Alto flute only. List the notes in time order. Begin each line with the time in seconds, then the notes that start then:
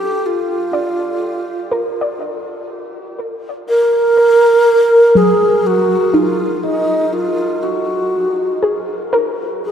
Already playing: G4
0.26 F4
3.68 A#4
5.17 G#4
5.67 F#4
6.14 F4
6.63 D#4
7.13 F4
7.63 F#4
9.65 G#4